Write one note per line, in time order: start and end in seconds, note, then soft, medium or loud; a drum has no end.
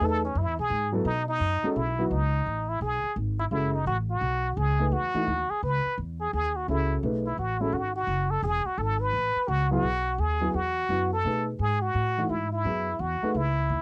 0.00 0.34 E2 medium
0.00 0.21 A3 medium
0.00 0.21 D#4 medium
0.00 0.21 G#4 medium
0.00 0.22 B4 medium
0.04 0.24 A4 medium
0.25 0.40 C#4 medium
0.35 0.47 F#2 medium
0.35 0.59 E4 medium
0.47 0.58 E2 medium
0.59 0.70 B1 medium
0.59 0.91 G#4 loud
0.70 1.04 G#2 medium
0.92 1.04 F#3 medium
0.92 1.05 B3 medium
0.92 1.05 E4 medium
0.92 1.05 A4 medium
1.05 1.39 B2 medium
1.05 1.27 D#4 medium
1.28 1.78 D#4 loud
1.40 1.61 F#2 medium
1.63 1.75 G#3 medium
1.63 1.75 C#4 medium
1.63 1.75 F#4 medium
1.63 1.76 A4 medium
1.63 muted upright bass stroke soft
1.76 2.10 B1 medium
1.76 2.11 E4 medium
1.98 2.10 F#3 medium
1.98 2.10 B3 medium
1.98 2.10 E4 medium
1.98 2.11 F#4 medium
2.11 2.45 C#2 medium
2.11 2.71 D#4 medium
2.46 2.80 A1 medium
2.69 2.81 E4 medium
2.81 3.02 B1 medium
2.81 3.14 G#4 medium
3.03 muted upright bass stroke soft
3.16 3.50 G#1 medium
3.40 3.45 E4 medium
3.51 3.85 F#1 medium
3.51 3.72 G#3 medium
3.51 3.72 C#4 soft
3.51 3.76 E4 medium
3.51 3.72 F#4 soft
3.51 3.72 A4 medium
3.75 3.87 D#4 medium
3.86 4.21 A1 medium
3.86 3.97 F#4 medium
4.10 4.59 F#4 medium
4.21 4.56 B1 medium
4.57 4.91 C#2 medium
4.57 4.94 G#4 medium
4.79 4.91 A3 medium
4.79 4.91 D#4 medium
4.79 4.91 G#4 medium
4.79 4.92 B4 medium
4.92 5.13 E2 medium
4.92 5.52 F#4 loud
5.14 5.26 E3 medium
5.14 5.26 A3 medium
5.14 5.26 D#4 soft
5.14 5.27 F#4 medium
5.14 muted upright bass stroke soft
5.27 5.48 D#2 medium
5.50 5.63 G#4 medium
5.50 muted upright bass stroke soft
5.63 5.83 C#2 medium
5.63 5.96 B4 medium
5.86 muted upright bass stroke soft
5.98 6.32 E2 medium
6.21 6.32 G#4 medium
6.33 6.67 D#2 medium
6.33 6.58 G#4 medium
6.56 6.68 F#4 medium
6.68 7.02 C#2 medium
6.68 7.03 C#4 medium
6.68 6.96 E4 medium
6.68 7.04 F#4 soft
6.68 7.03 G#4 medium
6.68 7.04 A4 medium
7.03 7.37 B1 medium
7.03 7.23 A3 medium
7.03 7.24 D#4 medium
7.03 7.24 G#4 medium
7.03 7.24 B4 medium
7.27 7.38 E4 medium
7.37 7.72 A1 medium
7.37 7.62 F#4 medium
7.60 7.72 G#3 medium
7.60 7.72 C#4 medium
7.60 7.75 E4 medium
7.60 7.72 F#4 medium
7.60 7.73 A4 medium
7.72 8.06 G#1 medium
7.72 7.95 F#4 medium
7.96 8.32 F#4 medium
8.07 8.42 F#1 medium
8.31 8.43 A4 medium
8.42 8.64 E1 medium
8.42 8.68 G#4 loud
8.65 8.80 F#4 medium
8.65 muted upright bass stroke soft
8.78 9.12 G#1 medium
8.78 9.02 A4 medium
9.01 9.50 B4 medium
9.13 9.34 A1 medium
9.36 muted upright bass stroke soft
9.48 9.82 C#2 medium
9.48 9.71 F#4 loud
9.71 9.82 F#3 medium
9.71 9.83 B3 medium
9.71 9.83 E4 medium
9.71 10.21 F#4 medium
9.71 9.83 G#4 medium
9.83 10.17 B1 medium
10.18 10.53 D#2 medium
10.18 10.57 G#4 medium
10.41 10.53 F#3 medium
10.41 10.53 B3 medium
10.41 10.53 E4 medium
10.41 10.53 G#4 medium
10.54 10.88 E2 medium
10.54 11.12 F#4 medium
10.89 11.23 F#2 medium
10.89 11.10 F#3 soft
10.89 11.10 B3 soft
10.89 11.10 E4 soft
10.89 11.10 F#4 medium
11.13 11.45 A4 medium
11.24 11.58 B2 medium
11.24 11.45 A3 medium
11.24 11.45 D#4 medium
11.24 11.46 G#4 medium
11.24 11.46 B4 medium
11.59 11.94 G#2 medium
11.59 11.84 G#4 medium
11.82 12.32 F#4 medium
11.95 12.29 A2 medium
12.18 12.29 E3 medium
12.18 12.29 A3 soft
12.18 12.29 D#4 soft
12.18 12.30 F#4 medium
12.29 12.64 G#2 medium
12.29 12.52 E4 medium
12.53 13.02 E4 medium
12.64 12.99 F#2 medium
12.64 12.85 F#3 soft
12.64 12.86 B3 soft
12.64 12.86 E4 soft
12.64 12.86 G#4 soft
12.99 13.21 E2 medium
12.99 13.39 F#4 medium
13.22 13.34 A3 medium
13.22 13.34 D#4 medium
13.22 13.35 G#4 medium
13.22 13.35 B4 medium
13.22 muted upright bass stroke soft
13.34 13.69 C#2 medium
13.34 13.82 E4 medium
13.69 13.82 D#2 medium